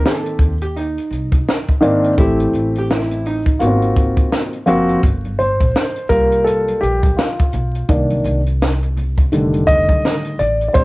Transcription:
0.00 0.51 D#3 medium
0.00 0.52 A#3 medium
0.00 0.52 C4 medium
0.00 0.52 G4 medium
0.06 0.62 A4 medium
0.06 snare loud
0.26 closed hi-hat medium
0.39 0.97 D#2 medium
0.39 kick medium
0.39 closed hi-hat medium
0.62 0.76 G4 medium
0.62 closed hi-hat soft
0.77 1.79 D#4 medium
0.77 closed hi-hat medium
0.98 closed hi-hat soft
1.11 1.40 C2 medium
1.11 closed hi-hat medium
1.32 kick medium
1.32 closed hi-hat soft
1.49 snare loud
1.68 kick medium
1.68 closed hi-hat soft
1.81 2.11 G#1 medium
1.81 2.12 D#3 medium
1.81 2.12 A#3 medium
1.81 2.13 C4 medium
1.81 2.13 D4 medium
1.81 closed hi-hat medium
2.04 closed hi-hat soft
2.17 2.47 A1 medium
2.17 3.37 E3 medium
2.17 3.38 A3 medium
2.17 3.38 C4 medium
2.17 2.78 E4 medium
2.17 3.38 G4 medium
2.17 kick loud
2.17 closed hi-hat medium
2.40 closed hi-hat soft
2.53 3.57 A1 medium
2.53 closed hi-hat medium
2.75 2.91 G4 loud
2.75 closed hi-hat soft
2.91 3.27 E4 loud
2.91 snare loud
3.11 closed hi-hat medium
3.25 4.65 D#4 medium
3.25 closed hi-hat medium
3.46 kick medium
3.46 closed hi-hat soft
3.59 4.18 G#1 loud
3.59 4.52 A#3 medium
3.59 3.68 B3 medium
3.59 4.52 F4 medium
3.59 4.53 F#4 medium
3.59 closed hi-hat medium
3.67 4.55 C4 medium
3.82 closed hi-hat soft
3.96 kick medium
3.96 closed hi-hat medium
4.17 kick medium
4.17 closed hi-hat soft
4.32 snare medium
4.53 closed hi-hat soft
4.66 4.96 F#1 medium
4.66 4.98 F3 medium
4.66 4.98 A#3 medium
4.66 4.98 C4 medium
4.66 4.99 F#4 medium
4.66 closed hi-hat medium
4.89 closed hi-hat soft
5.03 5.50 G1 loud
5.03 kick medium
5.03 closed hi-hat medium
5.03 shaker medium
5.25 closed hi-hat soft
5.25 high conga medium
5.25 shaker soft
5.39 6.06 C5 medium
5.39 closed hi-hat medium
5.39 low conga medium
5.39 shaker soft
5.60 5.72 A#1 medium
5.60 kick medium
5.60 closed hi-hat soft
5.60 shaker soft
5.74 snare loud
5.74 shaker medium
5.96 closed hi-hat soft
5.96 shaker soft
6.09 6.68 C2 medium
6.09 7.13 G3 medium
6.09 7.13 A#3 soft
6.09 7.14 F4 medium
6.09 6.47 A#4 medium
6.09 kick medium
6.09 closed hi-hat medium
6.09 low conga medium
6.09 shaker soft
6.32 closed hi-hat soft
6.32 shaker soft
6.44 6.82 A4 medium
6.44 closed hi-hat medium
6.44 shaker medium
6.67 closed hi-hat soft
6.67 high conga soft
6.67 shaker soft
6.80 7.11 A#1 medium
6.80 7.18 G4 medium
6.80 closed hi-hat medium
6.80 shaker soft
7.03 kick medium
7.03 closed hi-hat medium
7.03 high conga medium
7.03 shaker soft
7.16 7.84 F4 medium
7.16 snare loud
7.16 shaker medium
7.39 kick medium
7.39 closed hi-hat soft
7.39 shaker soft
7.53 7.82 B1 medium
7.53 closed hi-hat medium
7.53 low conga medium
7.53 shaker soft
7.75 closed hi-hat soft
7.75 shaker soft
7.89 8.18 C2 loud
7.89 8.39 D#3 medium
7.89 8.39 A#3 soft
7.89 8.40 D4 medium
7.89 kick loud
7.89 closed hi-hat medium
7.89 shaker medium
8.10 closed hi-hat soft
8.10 high conga medium
8.10 shaker soft
8.24 9.28 C2 medium
8.24 closed hi-hat medium
8.24 low conga medium
8.24 shaker soft
8.46 closed hi-hat soft
8.46 shaker soft
8.61 snare loud
8.61 shaker medium
8.82 closed hi-hat medium
8.82 shaker soft
8.96 closed hi-hat medium
8.96 low conga medium
8.96 shaker soft
9.18 kick medium
9.18 closed hi-hat soft
9.18 shaker soft
9.31 9.90 F1 medium
9.31 10.36 D3 medium
9.31 10.35 D#3 soft
9.31 10.35 G3 soft
9.31 10.35 A3 soft
9.31 closed hi-hat medium
9.31 shaker medium
9.53 closed hi-hat soft
9.53 high conga soft
9.53 shaker soft
9.67 10.41 D#5 loud
9.67 kick medium
9.67 closed hi-hat medium
9.67 shaker soft
9.89 kick medium
9.89 closed hi-hat soft
9.89 high conga medium
9.89 shaker soft
10.03 snare medium
10.03 shaker medium
10.25 closed hi-hat medium
10.25 shaker soft
10.39 10.68 A1 medium
10.39 10.67 D5 medium
10.39 closed hi-hat medium
10.39 low conga medium
10.39 shaker soft
10.60 closed hi-hat soft
10.60 shaker soft
10.68 10.74 D5 medium
10.73 10.84 A#1 medium
10.73 10.84 G3 medium
10.73 10.84 C4 soft
10.73 10.84 D4 medium
10.73 10.84 C5 medium
10.73 kick loud
10.73 closed hi-hat medium
10.73 shaker medium

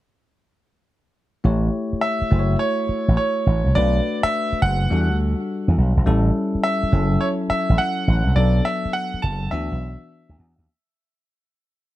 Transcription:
1.44 1.68 A1 loud
1.44 2.29 A3 medium
1.44 2.30 E4 medium
1.44 2.31 G4 medium
1.44 2.32 C#5 medium
1.93 muted slap bass stroke soft
2.01 2.56 E5 medium
2.22 muted slap bass stroke soft
2.31 2.55 F#1 medium
2.31 3.72 A3 medium
2.31 3.73 E4 medium
2.31 3.73 F#4 medium
2.31 2.41 C5 medium
2.39 3.77 C#5 medium
2.59 3.16 C#5 medium
2.89 muted slap bass stroke soft
3.08 3.16 A1 medium
3.17 3.71 C#5 medium
3.47 3.62 A1 loud
3.66 3.74 C2 medium
3.75 3.99 B1 loud
3.75 4.88 A3 medium
3.75 4.89 D4 medium
3.75 4.89 F#4 medium
3.75 4.90 B4 medium
3.75 4.25 D5 medium
4.23 4.59 E5 loud
4.23 muted slap bass stroke soft
4.52 muted slap bass stroke soft
4.62 4.85 F#1 medium
4.62 5.16 F#5 loud
4.90 5.10 E2 loud
4.90 6.04 G3 medium
4.90 6.04 D4 medium
4.90 6.05 F#4 medium
4.90 6.05 A4 medium
5.10 5.33 D2 medium
5.68 5.76 E2 medium
5.78 5.93 B1 loud
5.97 6.05 A#1 medium
6.06 6.30 A1 loud
6.06 6.93 G3 medium
6.06 6.92 C#4 medium
6.06 6.93 E4 medium
6.06 6.93 A4 medium
6.55 muted slap bass stroke soft
6.63 7.23 E5 medium
6.83 muted slap bass stroke soft
6.92 7.16 F#1 loud
6.92 8.34 F#3 medium
6.92 8.34 C#4 medium
6.92 8.35 E4 medium
6.92 8.35 A4 medium
7.21 7.27 C#5 medium
7.50 7.80 E5 medium
7.50 muted slap bass stroke soft
7.70 7.77 A1 medium
7.78 8.32 F#5 medium
8.08 8.23 A1 loud
8.27 8.35 C2 medium
8.36 8.60 B1 loud
8.36 9.49 F#3 medium
8.36 9.50 B3 medium
8.36 9.50 D4 medium
8.36 9.51 A4 medium
8.36 8.66 D5 medium
8.65 8.92 E5 medium
8.85 muted slap bass stroke soft
8.93 9.21 F#5 loud
9.14 muted slap bass stroke soft
9.22 9.47 F#1 medium
9.22 9.50 A5 medium
9.51 9.68 D2 loud
9.51 10.65 E3 medium
9.51 10.65 B3 medium
9.51 10.66 D4 medium
9.51 10.66 F#4 medium
9.51 10.34 E5 medium
9.72 9.95 B1 medium
10.29 10.37 D2 medium
10.39 10.55 E2 loud
10.58 10.66 D#2 medium

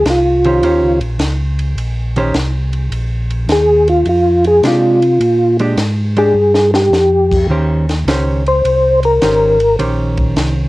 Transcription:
0.05 0.61 C2 medium
0.05 snare medium
0.05 hi-hat pedal medium
0.05 ride medium
0.10 0.99 F4 medium
0.44 0.62 D#3 medium
0.44 0.62 C#4 medium
0.44 0.62 G4 medium
0.44 0.62 C5 medium
0.44 ride soft
0.62 0.81 D#2 medium
0.62 0.98 D#3 soft
0.62 0.98 C#4 medium
0.62 0.98 G4 medium
0.62 0.98 C5 medium
0.62 ride medium
0.81 1.01 C#2 medium
1.00 1.18 A#1 medium
1.00 ride soft
1.19 1.75 C#2 medium
1.19 snare medium
1.19 hi-hat pedal soft
1.19 ride medium
1.59 ride soft
1.76 2.32 A#1 medium
1.76 ride medium
2.16 2.33 D#3 medium
2.16 2.34 C#4 medium
2.16 2.34 G4 medium
2.16 2.34 C5 medium
2.16 ride soft
2.34 2.90 C2 medium
2.34 snare medium
2.34 hi-hat pedal medium
2.34 ride medium
2.73 ride soft
2.90 3.47 A#1 medium
2.90 ride medium
3.30 ride soft
3.48 4.04 D#2 medium
3.48 snare medium
3.48 hi-hat pedal medium
3.48 ride medium
3.52 3.88 G#4 medium
3.88 4.07 F4 medium
3.88 ride soft
4.06 4.62 F2 medium
4.06 4.45 F4 medium
4.06 ride medium
4.44 4.65 G#4 medium
4.44 ride soft
4.63 5.19 C3 medium
4.63 4.99 G#3 medium
4.63 4.99 D4 medium
4.63 4.99 G4 medium
4.63 snare medium
4.63 hi-hat pedal medium
4.63 ride medium
4.67 5.57 F4 medium
5.02 ride soft
5.20 5.76 A#2 medium
5.20 ride medium
5.59 5.77 G#3 medium
5.59 5.77 D4 medium
5.59 5.77 G4 medium
5.59 ride soft
5.77 6.33 G#2 medium
5.77 snare medium
5.77 hi-hat pedal medium
5.77 ride medium
6.17 6.34 G#3 medium
6.17 6.34 D4 medium
6.17 6.34 G4 medium
6.17 6.71 G#4 medium
6.17 ride soft
6.34 6.90 G2 medium
6.55 snare medium
6.74 7.47 G4 medium
6.74 snare medium
6.91 7.47 F2 medium
6.91 snare medium
6.91 hi-hat pedal soft
7.32 kick medium
7.32 crash medium
7.48 8.04 D#2 medium
7.48 7.84 D#3 soft
7.48 7.85 C#4 soft
7.48 7.85 G4 medium
7.48 7.85 C5 medium
7.89 snare soft
7.89 ride soft
8.05 8.62 C#2 medium
8.05 8.42 D#3 medium
8.05 8.42 C#4 medium
8.05 8.42 G4 medium
8.05 8.42 C5 medium
8.05 snare medium
8.05 hi-hat pedal soft
8.05 ride medium
8.46 9.00 C5 medium
8.46 ride soft
8.64 9.20 C2 medium
8.64 ride medium
9.03 9.76 A#4 medium
9.03 ride soft
9.22 9.77 G#1 medium
9.22 9.56 D#3 soft
9.22 9.57 C#4 medium
9.22 9.57 G4 medium
9.22 9.57 C5 medium
9.22 snare medium
9.22 hi-hat pedal medium
9.22 ride medium
9.60 ride soft
9.79 10.34 A#1 medium
9.79 10.69 D#3 medium
9.79 10.69 C#4 medium
9.79 10.69 G4 medium
9.79 10.69 C5 medium
9.79 ride medium
10.17 kick medium
10.17 ride soft
10.36 10.69 C2 medium
10.36 snare medium
10.36 hi-hat pedal medium
10.36 ride medium

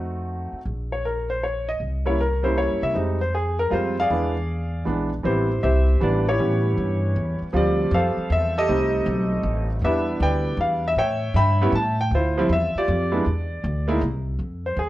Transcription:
0.00 0.48 F2 medium
0.00 0.57 A3 soft
0.00 0.58 C4 soft
0.00 0.58 D#4 soft
0.00 0.58 F#4 medium
0.52 muted upright bass stroke soft
0.65 1.76 A#1 medium
0.92 1.05 C#5 medium
1.05 1.28 A#4 medium
1.30 1.42 C5 medium
1.43 1.69 C#5 medium
1.68 1.80 D#5 medium
1.80 2.65 C2 medium
2.06 2.17 G3 medium
2.06 2.17 A#3 soft
2.06 2.17 C#4 medium
2.06 2.17 E4 medium
2.06 2.19 C#5 medium
2.21 2.43 A#4 medium
2.43 2.92 G3 medium
2.43 2.92 A#3 medium
2.43 2.93 C#4 medium
2.43 2.93 E4 medium
2.43 2.57 C5 medium
2.58 2.81 C#5 medium
2.71 2.82 G2 soft
2.83 2.94 C3 medium
2.83 2.95 E5 medium
2.94 3.68 F2 medium
2.94 3.17 G3 soft
2.94 3.18 G#3 soft
2.94 3.18 C4 soft
2.94 3.18 D#4 medium
3.21 3.33 C5 medium
3.35 3.58 G#4 medium
3.59 3.72 A#4 medium
3.70 4.07 F2 medium
3.70 3.94 G3 medium
3.70 3.94 G#3 medium
3.70 3.94 C4 medium
3.70 3.94 F4 medium
3.70 3.96 C5 medium
4.00 4.84 G#4 medium
4.00 4.84 D5 medium
4.00 4.84 F5 medium
4.10 4.82 E2 medium
4.10 4.33 E3 medium
4.10 4.33 G#3 soft
4.10 4.33 B3 soft
4.10 4.33 D4 medium
4.85 5.22 A#1 medium
4.85 5.09 E3 medium
4.85 5.09 G#3 medium
4.85 5.09 B3 soft
4.85 5.09 D4 medium
5.23 5.62 A1 medium
5.23 5.47 E3 medium
5.23 5.47 G3 soft
5.23 5.47 B3 medium
5.23 5.47 C4 medium
5.23 5.62 G4 medium
5.23 5.60 C5 medium
5.27 5.86 E4 medium
5.63 6.00 C2 medium
5.63 6.23 G4 medium
5.63 6.23 C5 medium
5.63 6.02 E5 medium
6.00 6.38 A1 medium
6.00 6.23 E3 medium
6.00 6.24 G3 medium
6.00 6.24 B3 medium
6.00 6.24 D4 medium
6.00 6.28 D5 medium
6.28 7.38 E4 medium
6.28 7.38 G4 medium
6.28 7.38 C#5 medium
6.39 6.76 A2 medium
6.39 7.46 E3 medium
6.39 7.46 G3 soft
6.39 7.46 B3 soft
6.39 7.46 C#4 medium
6.77 7.14 G2 medium
7.16 7.39 E2 medium
7.41 muted upright bass stroke soft
7.53 7.90 D2 medium
7.53 8.60 F3 medium
7.53 8.60 G3 medium
7.53 8.60 C4 medium
7.53 8.61 F4 medium
7.53 8.14 G4 medium
7.53 7.94 D5 medium
7.91 8.15 F2 medium
7.91 8.53 A4 medium
7.91 8.53 C5 medium
7.91 8.32 F5 medium
8.17 muted upright bass stroke soft
8.30 8.67 E2 medium
8.30 8.57 E5 medium
8.58 9.67 G4 medium
8.58 9.67 A4 medium
8.58 9.67 D#5 loud
8.68 9.05 C2 medium
8.68 9.75 G3 medium
8.68 9.75 A3 medium
8.68 9.75 C4 medium
8.68 9.75 D#4 medium
9.06 9.43 B1 medium
9.44 9.81 A1 medium
9.81 10.19 E2 medium
9.81 10.90 G3 medium
9.81 10.90 B3 medium
9.81 10.90 D4 medium
9.81 10.91 E4 medium
9.81 10.43 G4 medium
9.81 10.21 B4 medium
9.81 10.19 E5 medium
10.20 10.57 D2 medium
10.20 10.81 B4 medium
10.20 10.81 D5 medium
10.20 10.57 G5 medium
10.57 10.95 E2 medium
10.57 10.86 F5 medium
10.88 10.93 E5 medium
10.96 11.33 A2 medium
10.96 11.57 C#5 medium
10.96 11.34 E5 medium
10.96 11.35 G5 loud
11.34 11.71 G2 medium
11.34 11.95 E5 medium
11.34 11.95 G5 medium
11.34 11.71 B5 loud
11.61 11.72 G3 medium
11.61 11.72 B3 medium
11.61 11.73 C#4 medium
11.61 11.73 E4 medium
11.72 12.09 A2 medium
11.72 11.98 A5 medium
12.01 12.11 G5 medium
12.11 12.48 D2 medium
12.11 12.72 F4 medium
12.11 12.52 C5 medium
12.15 12.37 E4 medium
12.37 12.48 F3 medium
12.37 12.48 G3 medium
12.37 12.49 C4 medium
12.37 12.49 E4 medium
12.49 12.73 E2 medium
12.49 12.77 E5 medium
12.75 13.24 F4 medium
12.75 13.24 G4 medium
12.75 13.99 D5 medium
12.75 muted upright bass stroke soft
12.88 13.24 F2 medium
13.12 13.24 G#3 medium
13.12 13.24 B3 medium
13.12 13.24 D4 medium
13.12 13.24 E4 medium
13.26 13.62 E2 medium
13.64 14.00 D2 medium
13.88 14.00 G#3 medium
13.88 14.00 A#3 medium
13.88 14.00 D#4 medium
13.88 14.00 E4 medium
14.01 14.38 C2 medium
14.39 14.76 F2 medium
14.66 14.79 C5 medium
14.76 14.89 D#2 medium
14.76 14.89 G#4 medium

